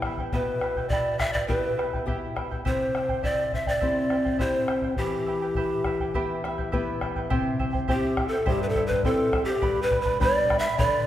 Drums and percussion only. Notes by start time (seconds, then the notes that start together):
0.02 bombo rim, bombo low
0.17 bombo low
0.32 bombo low
0.61 bombo rim
0.76 bombo low
0.90 bombo low
1.20 bombo rim, bombo low
1.35 bombo low
1.49 bombo low
1.79 bombo rim
1.94 bombo low
2.08 bombo low
2.37 bombo rim, bombo low
2.52 bombo low
2.66 bombo low
2.95 bombo rim
3.09 bombo low
3.23 bombo low
3.52 bombo low
3.66 bombo low
3.81 bombo low
4.10 bombo rim
4.26 bombo low
4.39 bombo low
4.68 bombo rim
4.82 bombo low
4.96 bombo low
5.55 bombo low
5.84 bombo rim, bombo low
6.00 bombo low
6.14 bombo low
6.44 bombo rim
6.58 bombo low
6.73 bombo low
7.01 bombo rim, bombo low
7.16 bombo low
7.31 bombo low
7.59 bombo low
7.74 bombo low
7.88 bombo low
8.17 bombo rim, bombo low
8.47 bombo low
8.75 bombo low
8.90 bombo low
9.03 bombo low
9.33 bombo rim, bombo low
9.62 bombo low
9.91 bombo low
10.05 bombo low
10.21 bombo low
10.50 bombo rim, bombo low
10.79 bombo low